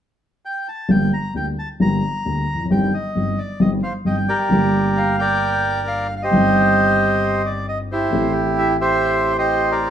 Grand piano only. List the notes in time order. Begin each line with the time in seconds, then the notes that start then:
0.88 G1 G2 D3 G3 A#3 G4
1.34 D2 D3 G3 A#3 G4
1.80 G1 G2 D3 G3 A#3 G4
2.25 D2 D3 G3 A#3 G4
2.54 E2
2.60 F2
2.65 F#2
2.70 G1 G2 D#3 G3 C4 G4
3.15 G1 G2 D#3 G3 C4 G4
3.60 G1 G2 D#3 G3 C4 G4
4.05 G1 G2 D#3 G3 C4 G4
4.49 G1 G2 D3 G3 A#3 G4
6.31 G1 G2 D#3 G3 C4
6.35 G4
8.10 A1 A2 E3 A3 C4
8.15 G4